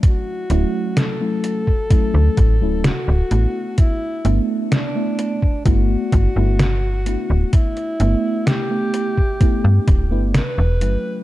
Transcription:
<<
  \new Staff \with { instrumentName = "Alto saxophone" } { \time 4/4 \key g \lydian \tempo 4 = 64 fis'4 a'2 fis'4 | e'8 r8 d'4 fis'2 | e'4 g'4. r8 b'4 | }
  \new Staff \with { instrumentName = "FM electric piano" } { \time 4/4 \key g \lydian <fis a cis' e'>8 <fis a cis' e'>8. <fis a cis' e'>8 r16 <fis a cis' e'>8. <fis a cis' e'>16 r8 <a b d' e'>8~ | <a b d' e'>8 <a b d' e'>8. <a b d' e'>8 r16 <a b d' e'>8. <a b d' e'>16 r8 <a b d' e'>8~ | <a b d' e'>8 <a b d' e'>8. <a b d' e'>8 r16 <a b d' e'>8. <a b d' e'>16 r8 <fis a cis' e'>8 | }
  \new Staff \with { instrumentName = "FM bass" } { \clef bass \time 4/4 \key g \lydian r8 d,,16 r4. d,16 a,,16 d,,16 r16 d,,16 a,,16 r16 | r8 g,,16 r4 r16 g,,16 r16 g,,16 g,,8. r16 d,,16 | r8 g,,16 r4. g,16 d,,16 g,,16 r16 e,,16 g,,16 r16 | }
  \new DrumStaff \with { instrumentName = "Drums" } \drummode { \time 4/4 <hh bd>8 hh8 <hh sn>8 hh16 bd16 <hh bd>8 <hh bd>8 <hh sn>8 hh8 | <hh bd>8 hh8 <hh sn>8 hh16 bd16 <hh bd>8 <hh bd>8 <hh sn>8 hh8 | <hh bd>16 hh16 hh8 <hh sn>8 hh16 bd16 <hh bd>8 <hh bd>8 <hh sn>8 hh8 | }
>>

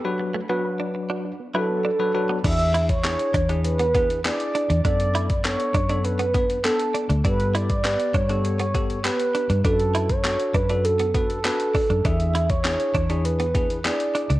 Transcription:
<<
  \new Staff \with { instrumentName = "Soft synth lead" } { \time 4/4 \key e \dorian \tempo 4 = 100 r2 r8 a'4. | e''8. cis''4~ cis''16 b'4 d''4 | d''4 cis''4 b'4 a'8. r16 | b'8 d''4 cis''4. b'4 |
a'8. cis''8. b'8 a'8 a'4. | e''8. cis''4~ cis''16 b'4 d''4 | }
  \new Staff \with { instrumentName = "Tine electric piano" } { \time 4/4 \key e \dorian <fis d' fis' b'>8 r16 <fis d' fis' b'>4~ <fis d' fis' b'>16 r8 <fis d' fis' b'>8 r16 <fis d' fis' b'>16 <fis d' fis' b'>8 | <d' e' gis'>8. r16 <d' e' gis'>8 r16 <d' e' gis'>8 r16 <d' e' gis'>8 <d' e' gis'>8. r16 | <b d' a'>8. r16 <b d' a'>8 r16 <b d' a'>8 r16 <b d' b'>8 <b d' a'>8. r16 | <b g' a'>8. r16 <b g' b'>8 r16 <b g' a'>8 r16 <b g' a'>8 <b g' b'>8. r16 |
<d' fis' b'>8. r16 <d' fis' a'>8 r16 <d' fis' a'>8 r16 <d' fis' b'>8 <d' fis' b'>8. r16 | <d' e' gis'>8. r16 <d' e' gis'>8 r16 <d' e' gis'>8 r16 <d' e' gis'>8 <d' e' gis'>8. r16 | }
  \new Staff \with { instrumentName = "Clean electric guitar" } { \time 4/4 \key e \dorian r8 a16 b16 r16 d'16 r16 d'16 r8 e'16 r16 d'16 r8 b16 | d'16 r16 e'16 r8. d'16 d'16 r16 b16 b16 r8. d'16 d'16 | d'16 r16 e'16 r8. d'16 d'16 r16 b16 b16 r8. d'16 d'16 | d'16 r16 e'16 r8. d'16 d'16 r16 b16 b16 r8. d'16 d'16 |
d'16 r16 e'16 r8. d'16 d'16 r16 b16 b16 r8. d'16 d'16 | d'16 r16 e'16 r8. d'16 d'16 r16 b16 b16 r8. d'16 d'16 | }
  \new Staff \with { instrumentName = "Synth pluck" } { \time 4/4 \key e \dorian fis16 b16 d'16 fis'16 b'16 d''16 r16 fis'16 d'16 b16 fis16 b16 d'16 r16 b'16 d''16 | r1 | r1 | r1 |
r1 | r1 | }
  \new Staff \with { instrumentName = "Fingered electric bass" } { \clef bass \time 4/4 \key e \dorian r1 | e,4. e,2 r16 e,16 | fis,4. fis,2 r16 d,16 | g,4. g,2 r16 g,16 |
fis,4. fis,2 r16 fis,16 | e,4. e,2 r16 cis,16 | }
  \new DrumStaff \with { instrumentName = "Drums" } \drummode { \time 4/4 r4 r4 r4 r4 | <cymc hh bd>16 hh16 hh16 <hh bd>16 <hc hh sn>16 hh16 <hh bd>16 hh16 hh16 hh16 <hh bd>16 hh16 <hc hh sn>16 hh16 hh16 hh16 | <hh bd>16 hh16 hh16 <hh bd>16 <hc hh sn>16 hh16 <hh bd>16 hh16 hh16 hh16 <hh bd>16 hh16 <hc hh sn>16 hh16 hh16 hh16 | <hh bd>16 hh16 hh16 <hh bd>16 <hc hh sn>16 hh16 <hh bd>16 hh16 hh16 hh16 <hh bd>16 hh16 <hc hh sn>16 hh16 hh16 hh16 |
<hh bd>16 hh16 hh16 <hh bd>16 <hc hh sn>16 hh16 <hh bd>16 hh16 hh16 hh16 <hh bd>16 hh16 <hc hh sn>16 hh16 <hho bd>16 hh16 | <hh bd>16 hh16 hh16 <hh bd>16 <hc hh sn>16 hh16 <hh bd>16 hh16 hh16 hh16 <hh bd>16 hh16 <hc hh sn>16 hh16 hh16 hh16 | }
>>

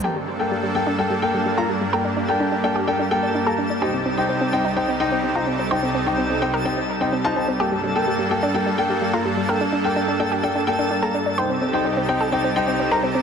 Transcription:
<<
  \new Staff \with { instrumentName = "Synth texture" } { \time 4/4 \key g \minor \tempo 4 = 127 <a' a''>1~ | <a' a''>1~ | <a' a''>1~ | <a' a''>1~ |
<a' a''>1~ | <a' a''>1~ | <a' a''>1 | }
  \new Staff \with { instrumentName = "Grand piano" } { \time 4/4 \key g \minor <bes a' g''>16 r8 <bes a' g''>8. <bes a' g''>16 r16 <bes a' g''>16 r16 <bes a' g''>8. <bes a' bes''>16 r8 | <bes a' g''>16 r8 <bes a' g''>8. <bes a' g''>16 r16 <bes a' g''>16 r16 <bes a' g''>8. <bes a' bes''>16 r8 | <ees' c'' g''>16 r8 <ees' c'' g''>8. <ees' c'' g''>16 r16 <ees' c'' g''>16 r16 <ees' c'' g''>8. <ees' c'' bes''>16 r8 | <ees' c'' g''>16 r8 <ees' c'' g''>8. <ees' c'' g''>16 r16 <ees' c'' g''>16 r8 <ees' c'' g''>16 r16 <ees' c'' a''>16 <ees' c'' a''>16 r16 |
<bes a' g''>16 r8 <bes a' g''>8. <bes a' g''>16 r16 <bes a' g''>16 r16 <bes a' g''>8. <bes a' bes''>16 r8 | <bes a' g''>16 r8 <bes a' g''>8. <bes a' g''>16 r16 <bes a' g''>16 r16 <bes a' g''>8. <bes a' bes''>16 r8 | <ees' c'' g''>16 r8 <ees' c'' g''>8. <ees' c'' g''>16 r16 <ees' c'' g''>16 r16 <ees' c'' g''>8. <ees' c'' bes''>16 r8 | }
  \new Staff \with { instrumentName = "Synth arpeggio sound" } { \time 4/4 \key g \minor g'16 g16 g16 r16 g16 g16 g16 d'16 g16 g16 r16 g16 g16 f'16 g16 g16 | bes'16 d'16 d'16 r16 d'16 d'16 d'16 g'16 d'16 d'16 r16 d'16 d'16 a'16 d'16 d'16 | g'16 c'16 c'16 r16 c'16 c'16 c'16 ees'16 c'16 c'16 r16 c'16 c'16 f'16 c'16 c'16 | c''16 c'16 c'16 r16 c'16 c'16 c'16 bes'16 c'16 c'16 r16 c'16 c'16 f'16 c'16 c'16 |
g'16 g16 g16 r16 g16 g16 g16 d'16 g16 g16 r16 g16 g16 f'16 g16 g16 | bes'16 d'16 d'16 r16 d'16 d'16 d'16 g'16 d'16 d'16 r16 d'16 d'16 a'16 d'16 d'16 | c''16 c'16 c'16 r16 c'16 c'16 c'16 a'16 c'16 c'16 r16 c'16 c'16 bes'16 c'16 c'16 | }
  \new Staff \with { instrumentName = "Supersaw synth" } { \time 4/4 \key g \minor << { a'1 | g'1~ | g'1~ | g'1 |
a'1~ | a'1 | g'1 | } \\ { <g, g bes d'>1~ | <g, g bes d'>1 | <c, c ees'>1~ | <c, c ees'>1 |
<g, bes d'>1~ | <g, bes d'>1 | <c, c g ees'>1 | } >> }
>>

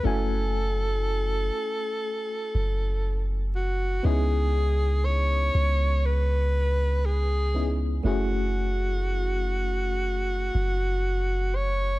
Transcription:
<<
  \new Staff \with { instrumentName = "Alto saxophone" } { \time 4/4 \key fis \dorian \tempo 4 = 60 a'2. r8 fis'8 | gis'4 cis''4 b'4 gis'8. r16 | fis'2.~ fis'8 cis''8 | }
  \new Staff \with { instrumentName = "FM electric piano" } { \time 4/4 \key fis \dorian <a cis' e' fis' gis''>1 | <b cis' dis' e' gis'>2.~ <b cis' dis' e' gis'>8 <b cis' dis' e' gis'>8 | <a cis' e' fis' gis'>1 | }
  \new Staff \with { instrumentName = "808-style bass" } { \clef bass \time 4/4 \key fis \dorian fis,,4. r4 fis,,4. | cis,4. cis,2~ cis,8 | fis,,2~ fis,,8 fis,,4. | }
>>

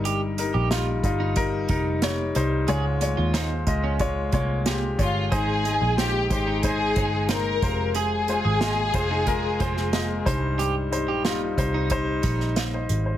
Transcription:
<<
  \new Staff \with { instrumentName = "Violin section" } { \time 4/4 \key f \minor \tempo 4 = 91 r1 | r2. r8 f'8 | aes'4 g'8 g'8 aes'4 bes'4 | aes'2.~ aes'8 r8 |
r1 | }
  \new Staff \with { instrumentName = "Clean electric guitar" } { \time 4/4 \key f \minor g'16 r8 g'16 f'16 r8 ees'16 r8 ees'8 r4 | aes'16 r8 f'16 ees'16 r8 des'16 r8 bes8. r8. | aes'16 r8 aes'16 f'16 r8 ees'16 r8 ees'8 r4 | aes'16 r8 aes'16 f'16 r8 ees'16 r8 f'8. r8. |
g'16 r8 g'16 f'16 r8 ees'16 r8 ees'8 r4 | }
  \new Staff \with { instrumentName = "Grand piano" } { \time 4/4 \key f \minor <g ees' bes'>8 <g ees' bes'>8 <g ees' f'>8 <g ees' f'>8 <g ees' bes'>8 <g ees' bes'>8 <g ees' des''>8 <g ees' c''>8 | <aes f' des''>8 <aes f' des''>8 <aes f' c''>8 <aes f' ees''>8 <aes f' des''>8 <aes f' des''>8 <aes f' g'>8 <aes f' des''>8 | <aes ees' c''>8 <aes ees' ees''>8 <aes ees' c''>8 <aes ees' c''>8 <aes ees' c''>8 <aes ees' c''>8 <aes ees' c''>8 <aes f' c''>8~ | <aes f' c''>8 <aes f' c''>8 <aes f' ees''>8 <aes f' c''>8 <aes f' bes'>8 <aes f' c''>8 <aes f' ees''>8 <g ees' c''>8~ |
<g ees' c''>8 <g ees' c''>8 <g ees' f'>8 <g ees' c''>8 <g ees' c''>8 r8 f''16 <c'' ees''>8 c''16 | }
  \new Staff \with { instrumentName = "Grand piano" } { \clef bass \time 4/4 \key f \minor g,4 r2. | aes,4. r2 r8 | <aes, ees>4. r2 c8~ | c4 r2 r8 g,8~ |
g,4 r2. | }
  \new Staff \with { instrumentName = "Picked electric bass" } { \clef bass \time 4/4 \key f \minor g,,8. bes,,8. g,,4 f,,4 c,8 | des,8. ees,8. des,4 c,4 g,,8 | aes,,8. bes,,8. aes,,4 g,,4 f,,8~ | f,,8. aes,,8. f,,4 f,,4 c,8~ |
c,8. bes,,8. c,4 bes,,4 aes,,8 | }
  \new DrumStaff \with { instrumentName = "Drums" } \drummode { \time 4/4 hh8 hh8 <hh sn>8 <hh bd>8 <hh bd>8 <hh bd>8 <hh sn>8 hh8 | hh8 hh8 <hh sn>8 <hh bd>8 <hh bd>8 <hh bd>8 <hh sn>8 <hh bd>8 | <hh bd>8 hh8 <hh sn>8 <hh bd>8 <hh bd>8 <hh bd>8 <hh sn>8 <hh bd>8 | hh8 hh8 <hh sn>8 <hh bd>8 <hh bd>8 <hh bd>16 sn16 <hh sn>8 <hh bd>8 |
hh8 hh8 <hh sn>8 <hh bd>8 <hh bd>8 <hh bd>16 sn16 <hh sn>8 hh8 | }
>>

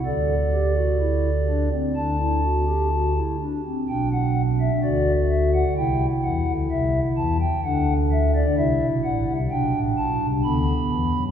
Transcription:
<<
  \new Staff \with { instrumentName = "Pipe organ" } { \time 4/4 \key g \major \tempo 4 = 64 << { d''2 a''4. r8 | g''16 fis''8 e''16 d''8 e''16 fis''16 g''8 fis''8 e''8 a''16 g''16 | fis''8 e''16 d''16 e''8 fis''8 g''8 a''8 b''4 | } \\ { a'8 g'16 fis'16 e'8 d'16 c'16 d'16 e'16 fis'16 g'16 fis'16 e'16 d'16 c'16 | d'4 fis'4 e'2 | d'4 e'4 d'4 b4 | } >> }
  \new Staff \with { instrumentName = "Pipe organ" } { \clef bass \time 4/4 \key g \major <d, d>2 <d, d>4. r8 | <b,, b,>4 <d, d>4 <c, c>8 <e, e>16 <d, d>16 <c, c>8 <e, e>8 | <d, d>4 <c, c>16 <b,, b,>16 <a,, a,>16 <c, c>16 <b,, b,>16 <a,, a,>16 <b,, b,>16 <c, c>16 <d, d>8 <e, e>16 <fis, fis>16 | }
>>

